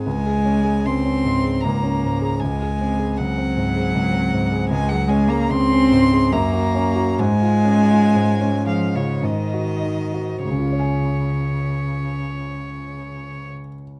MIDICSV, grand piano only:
0, 0, Header, 1, 2, 480
1, 0, Start_track
1, 0, Key_signature, -5, "major"
1, 0, Tempo, 786370
1, 34, Time_signature, 3, 2, 24, 8
1, 993, Tempo, 767263
1, 2913, Tempo, 814111
1, 3873, Tempo, 862069
1, 4353, Tempo, 955414
1, 4833, Tempo, 1079137
1, 5313, Tempo, 1204819
1, 7215, End_track
2, 0, Start_track
2, 0, Title_t, "Grand piano"
2, 0, Program_c, 0, 0
2, 0, Control_c, 0, 64, 127
2, 39, Note_on_c, 0, 37, 55
2, 46, Control_c, 0, 64, 0
2, 141, Control_c, 0, 64, 127
2, 161, Note_on_c, 0, 68, 41
2, 276, Note_on_c, 0, 61, 42
2, 352, Note_off_c, 0, 68, 0
2, 394, Note_on_c, 0, 68, 41
2, 469, Note_off_c, 0, 61, 0
2, 513, Note_off_c, 0, 37, 0
2, 522, Note_on_c, 0, 37, 46
2, 587, Note_off_c, 0, 68, 0
2, 641, Note_on_c, 0, 61, 41
2, 764, Note_on_c, 0, 44, 46
2, 830, Note_off_c, 0, 61, 0
2, 877, Note_on_c, 0, 68, 37
2, 950, Note_off_c, 0, 44, 0
2, 1000, Note_off_c, 0, 37, 0
2, 1009, Note_on_c, 0, 37, 49
2, 1067, Note_off_c, 0, 68, 0
2, 1121, Note_on_c, 0, 61, 44
2, 1257, Note_on_c, 0, 44, 42
2, 1311, Note_off_c, 0, 61, 0
2, 1362, Note_on_c, 0, 68, 41
2, 1439, Note_off_c, 0, 44, 0
2, 1470, Note_off_c, 0, 37, 0
2, 1480, Note_off_c, 0, 68, 0
2, 1487, Control_c, 0, 64, 0
2, 1494, Note_on_c, 0, 37, 53
2, 1582, Control_c, 0, 64, 127
2, 1618, Note_on_c, 0, 68, 40
2, 1732, Note_on_c, 0, 60, 40
2, 1802, Note_off_c, 0, 68, 0
2, 1848, Note_on_c, 0, 68, 43
2, 1919, Note_off_c, 0, 60, 0
2, 1963, Note_off_c, 0, 37, 0
2, 1973, Note_on_c, 0, 37, 47
2, 2036, Note_off_c, 0, 68, 0
2, 2089, Note_on_c, 0, 60, 40
2, 2207, Note_on_c, 0, 44, 45
2, 2274, Note_off_c, 0, 60, 0
2, 2327, Note_on_c, 0, 68, 40
2, 2392, Note_off_c, 0, 44, 0
2, 2434, Note_off_c, 0, 37, 0
2, 2443, Note_on_c, 0, 37, 49
2, 2511, Note_off_c, 0, 68, 0
2, 2554, Note_on_c, 0, 60, 45
2, 2684, Note_on_c, 0, 44, 44
2, 2744, Note_off_c, 0, 60, 0
2, 2801, Note_on_c, 0, 68, 47
2, 2870, Note_off_c, 0, 44, 0
2, 2902, Note_off_c, 0, 37, 0
2, 2917, Note_off_c, 0, 68, 0
2, 2919, Note_on_c, 0, 37, 64
2, 2924, Control_c, 0, 64, 0
2, 3019, Control_c, 0, 64, 127
2, 3041, Note_on_c, 0, 68, 49
2, 3150, Note_on_c, 0, 61, 45
2, 3225, Note_off_c, 0, 68, 0
2, 3274, Note_on_c, 0, 68, 48
2, 3342, Note_off_c, 0, 61, 0
2, 3375, Note_off_c, 0, 37, 0
2, 3383, Note_on_c, 0, 37, 56
2, 3464, Note_off_c, 0, 68, 0
2, 3513, Note_on_c, 0, 61, 45
2, 3632, Note_on_c, 0, 44, 55
2, 3704, Note_off_c, 0, 61, 0
2, 3759, Note_on_c, 0, 68, 48
2, 3825, Note_off_c, 0, 44, 0
2, 3855, Note_off_c, 0, 37, 0
2, 3870, Note_on_c, 0, 42, 66
2, 3876, Note_off_c, 0, 68, 0
2, 3883, Control_c, 0, 64, 0
2, 3989, Note_on_c, 0, 66, 49
2, 3993, Control_c, 0, 64, 127
2, 4109, Note_on_c, 0, 61, 53
2, 4180, Note_off_c, 0, 66, 0
2, 4225, Note_on_c, 0, 66, 51
2, 4304, Note_off_c, 0, 61, 0
2, 4337, Note_off_c, 0, 42, 0
2, 4351, Note_off_c, 0, 66, 0
2, 4355, Note_on_c, 0, 44, 67
2, 4364, Control_c, 0, 64, 0
2, 4465, Control_c, 0, 64, 127
2, 4468, Note_on_c, 0, 65, 52
2, 4585, Note_on_c, 0, 61, 47
2, 4658, Note_off_c, 0, 65, 0
2, 4711, Note_on_c, 0, 65, 47
2, 4781, Note_off_c, 0, 61, 0
2, 4830, Note_off_c, 0, 44, 0
2, 4837, Note_on_c, 0, 44, 53
2, 4903, Note_off_c, 0, 65, 0
2, 4952, Note_on_c, 0, 61, 47
2, 5068, Note_on_c, 0, 56, 45
2, 5140, Note_off_c, 0, 61, 0
2, 5194, Note_on_c, 0, 65, 42
2, 5263, Note_off_c, 0, 56, 0
2, 5300, Note_off_c, 0, 44, 0
2, 5315, Note_off_c, 0, 65, 0
2, 5316, Note_on_c, 0, 44, 54
2, 5322, Control_c, 0, 64, 0
2, 5404, Control_c, 0, 64, 127
2, 5438, Note_on_c, 0, 66, 44
2, 5557, Note_on_c, 0, 63, 38
2, 5633, Note_off_c, 0, 66, 0
2, 5678, Note_on_c, 0, 66, 33
2, 5754, Note_off_c, 0, 63, 0
2, 5788, Note_off_c, 0, 44, 0
2, 5801, Note_off_c, 0, 66, 0
2, 5801, Note_on_c, 0, 37, 37
2, 5812, Control_c, 0, 64, 0
2, 5828, Note_on_c, 0, 49, 43
2, 5856, Note_on_c, 0, 65, 42
2, 5887, Note_on_c, 0, 68, 39
2, 5912, Note_on_c, 0, 73, 38
2, 5925, Control_c, 0, 64, 127
2, 5940, Note_on_c, 0, 80, 42
2, 7003, Note_off_c, 0, 37, 0
2, 7030, Note_off_c, 0, 49, 0
2, 7058, Note_off_c, 0, 65, 0
2, 7090, Note_off_c, 0, 68, 0
2, 7114, Note_off_c, 0, 73, 0
2, 7143, Note_off_c, 0, 80, 0
2, 7215, End_track
0, 0, End_of_file